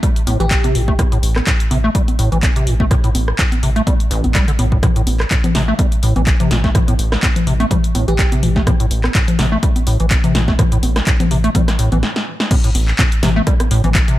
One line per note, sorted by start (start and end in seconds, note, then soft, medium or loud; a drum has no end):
0.03 0.10 G3 medium
0.03 kick loud
0.03 closed hi-hat medium
0.16 closed hi-hat medium
0.27 0.36 A1 loud
0.27 0.38 A2 medium
0.27 open hi-hat loud
0.27 high conga medium
0.40 0.57 A1 medium
0.40 0.46 E3 medium
0.40 1.07 G4 medium
0.40 closed hi-hat soft
0.51 kick loud
0.51 clap loud
0.51 closed hi-hat medium
0.64 0.76 C3 medium
0.64 closed hi-hat soft
0.64 high conga medium
0.75 0.93 A1 loud
0.75 0.82 A2 medium
0.75 open hi-hat medium
0.88 0.94 A3 loud
0.88 kick medium
0.99 1.03 A2 loud
0.99 kick loud
0.99 cross-stick medium
0.99 closed hi-hat medium
0.99 high conga medium
1.12 1.18 A2 medium
1.12 closed hi-hat soft
1.23 1.41 A1 loud
1.23 open hi-hat loud
1.36 cross-stick medium
1.36 clap soft
1.36 high conga medium
1.47 1.51 A2 loud
1.47 kick loud
1.47 clap loud
1.47 closed hi-hat medium
1.60 closed hi-hat medium
1.71 1.89 A1 medium
1.71 1.78 C3 medium
1.71 open hi-hat medium
1.71 high conga medium
1.84 1.90 A3 loud
1.95 2.02 G3 medium
1.95 kick loud
1.95 closed hi-hat medium
2.08 closed hi-hat soft
2.08 high conga medium
2.19 2.28 A1 loud
2.19 2.30 A2 medium
2.19 open hi-hat loud
2.32 2.49 A1 medium
2.32 2.38 E3 medium
2.32 closed hi-hat soft
2.43 kick loud
2.43 clap loud
2.43 closed hi-hat medium
2.43 high conga medium
2.56 2.69 C3 medium
2.56 closed hi-hat soft
2.67 2.85 A1 medium
2.67 2.74 A2 medium
2.67 open hi-hat medium
2.80 2.86 A3 loud
2.80 kick medium
2.80 high conga medium
2.91 2.95 A2 loud
2.91 kick loud
2.91 cross-stick medium
2.91 closed hi-hat medium
3.04 3.10 A2 medium
3.04 closed hi-hat soft
3.15 3.33 A1 loud
3.15 open hi-hat loud
3.15 high conga medium
3.28 cross-stick medium
3.39 3.43 A2 loud
3.39 kick loud
3.39 clap loud
3.39 closed hi-hat medium
3.52 closed hi-hat soft
3.52 high conga medium
3.63 3.81 A1 medium
3.63 3.70 C3 medium
3.63 open hi-hat medium
3.76 3.82 A3 medium
3.76 closed hi-hat soft
3.87 3.94 G3 medium
3.87 kick loud
3.87 closed hi-hat medium
3.87 high conga medium
4.00 closed hi-hat soft
4.11 4.20 A1 loud
4.11 4.25 A1 loud
4.11 open hi-hat loud
4.24 4.41 A1 medium
4.24 4.28 C3 medium
4.24 closed hi-hat soft
4.24 high conga medium
4.35 4.46 G3 loud
4.35 kick loud
4.35 clap loud
4.35 closed hi-hat medium
4.48 4.52 D3 loud
4.48 closed hi-hat soft
4.59 4.77 A1 medium
4.59 4.66 A2 medium
4.59 open hi-hat loud
4.59 high conga medium
4.72 4.78 A2 medium
4.72 kick medium
4.83 4.87 A2 loud
4.83 kick loud
4.83 cross-stick medium
4.83 closed hi-hat medium
4.83 low conga medium
4.96 5.02 A2 medium
4.96 closed hi-hat soft
5.07 5.25 A1 loud
5.07 open hi-hat loud
5.07 high conga medium
5.20 cross-stick medium
5.20 clap soft
5.31 5.35 A2 loud
5.31 kick loud
5.31 clap loud
5.31 closed hi-hat medium
5.44 closed hi-hat medium
5.44 high conga medium
5.44 low conga medium
5.55 5.73 A1 medium
5.55 5.62 C3 medium
5.55 snare medium
5.55 open hi-hat medium
5.68 5.74 A3 loud
5.79 5.86 G3 medium
5.79 kick loud
5.79 closed hi-hat medium
5.79 high conga medium
5.92 closed hi-hat soft
6.03 6.12 A1 loud
6.03 6.14 A2 medium
6.03 open hi-hat loud
6.16 6.33 A1 medium
6.16 6.22 E3 medium
6.16 closed hi-hat soft
6.16 high conga medium
6.27 kick loud
6.27 clap loud
6.27 closed hi-hat medium
6.40 6.52 C3 medium
6.40 closed hi-hat soft
6.40 low conga medium
6.51 6.69 A1 loud
6.51 6.58 A2 medium
6.51 snare medium
6.51 open hi-hat medium
6.51 high conga medium
6.64 6.70 A3 loud
6.64 kick medium
6.64 snare soft
6.75 6.79 A2 loud
6.75 kick loud
6.75 cross-stick medium
6.75 closed hi-hat medium
6.75 low conga medium
6.88 6.94 A2 medium
6.88 closed hi-hat medium
6.88 high conga medium
6.99 7.17 A1 loud
6.99 open hi-hat loud
7.12 cross-stick medium
7.12 snare medium
7.23 7.27 A2 loud
7.23 kick loud
7.23 clap loud
7.23 closed hi-hat medium
7.23 high conga medium
7.36 closed hi-hat medium
7.36 low conga medium
7.47 7.65 A1 medium
7.47 7.54 C3 medium
7.47 open hi-hat medium
7.60 7.66 A3 loud
7.60 closed hi-hat soft
7.60 high conga medium
7.71 7.78 G3 medium
7.71 kick loud
7.71 closed hi-hat medium
7.71 low conga medium
7.84 closed hi-hat soft
7.95 8.04 A1 loud
7.95 8.06 A2 medium
7.95 open hi-hat loud
7.95 high conga medium
8.08 8.25 A1 medium
8.08 8.14 E3 medium
8.08 8.75 G4 medium
8.08 closed hi-hat soft
8.19 kick loud
8.19 clap loud
8.19 closed hi-hat medium
8.32 8.44 C3 medium
8.32 closed hi-hat medium
8.32 high conga medium
8.43 8.61 A1 medium
8.43 8.50 A2 medium
8.43 open hi-hat medium
8.43 low conga medium
8.56 8.62 A3 loud
8.56 kick medium
8.56 snare soft
8.67 8.71 A2 loud
8.67 kick loud
8.67 cross-stick medium
8.67 closed hi-hat medium
8.67 high conga medium
8.67 low conga medium
8.80 8.86 A2 medium
8.80 closed hi-hat medium
8.91 9.09 A1 loud
8.91 open hi-hat loud
9.04 cross-stick medium
9.04 clap soft
9.04 high conga medium
9.15 9.19 A2 loud
9.15 kick loud
9.15 clap loud
9.15 closed hi-hat medium
9.28 closed hi-hat medium
9.28 low conga medium
9.39 9.57 A1 medium
9.39 9.46 C3 medium
9.39 snare medium
9.39 open hi-hat medium
9.39 high conga medium
9.52 9.58 A3 loud
9.63 9.70 G3 medium
9.63 kick loud
9.63 closed hi-hat medium
9.76 closed hi-hat soft
9.76 high conga medium
9.87 9.96 A1 loud
9.87 9.98 A2 medium
9.87 open hi-hat medium
10.00 10.17 A1 medium
10.00 10.06 E3 medium
10.00 closed hi-hat soft
10.11 kick loud
10.11 clap loud
10.11 closed hi-hat medium
10.11 high conga medium
10.24 10.36 C3 medium
10.24 closed hi-hat medium
10.24 low conga medium
10.35 10.53 A1 medium
10.35 10.42 A2 medium
10.35 snare medium
10.35 open hi-hat medium
10.48 10.54 A3 loud
10.48 kick medium
10.48 snare soft
10.48 high conga medium
10.59 10.63 A2 loud
10.59 kick loud
10.59 cross-stick medium
10.59 closed hi-hat medium
10.59 low conga medium
10.72 10.78 A2 medium
10.72 closed hi-hat medium
10.83 11.01 A1 loud
10.83 open hi-hat loud
10.83 high conga medium
10.96 cross-stick medium
10.96 snare medium
10.96 closed hi-hat soft
11.07 11.11 A2 loud
11.07 kick loud
11.07 clap loud
11.07 closed hi-hat medium
11.20 closed hi-hat medium
11.20 high conga medium
11.20 low conga medium
11.31 11.49 A1 medium
11.31 11.38 C3 medium
11.31 open hi-hat medium
11.44 11.50 A3 loud
11.44 closed hi-hat soft
11.55 11.62 G3 medium
11.55 kick loud
11.55 closed hi-hat medium
11.55 high conga medium
11.55 low conga medium
11.68 cross-stick medium
11.68 snare medium
11.68 closed hi-hat medium
11.79 11.88 A1 loud
11.79 11.90 A2 medium
11.79 open hi-hat loud
11.92 12.03 A1 medium
11.92 11.98 E3 medium
11.92 closed hi-hat soft
11.92 high conga medium
12.03 snare medium
12.16 snare medium
12.40 snare medium
12.51 12.55 A2 loud
12.51 kick loud
12.51 closed hi-hat medium
12.51 crash loud
12.51 high conga medium
12.64 12.70 A2 medium
12.64 closed hi-hat medium
12.75 12.93 A1 loud
12.75 open hi-hat loud
12.75 high conga soft
12.88 clap soft
12.99 13.03 A2 loud
12.99 kick loud
12.99 clap loud
12.99 closed hi-hat medium
12.99 high conga medium
13.12 closed hi-hat medium
13.23 13.41 A1 medium
13.23 13.30 C3 medium
13.23 snare medium
13.23 open hi-hat medium
13.23 low conga medium
13.36 13.42 A3 loud
13.36 high conga soft
13.47 13.54 G3 medium
13.47 kick loud
13.47 cross-stick medium
13.47 closed hi-hat medium
13.60 cross-stick medium
13.60 closed hi-hat medium
13.60 high conga medium
13.71 13.80 A1 loud
13.71 13.82 A2 medium
13.71 open hi-hat loud
13.84 14.01 A1 medium
13.84 13.90 E3 medium
13.84 closed hi-hat soft
13.84 high conga soft
13.84 low conga medium
13.95 kick loud
13.95 clap loud
13.95 closed hi-hat medium
14.08 14.19 C3 medium
14.08 closed hi-hat medium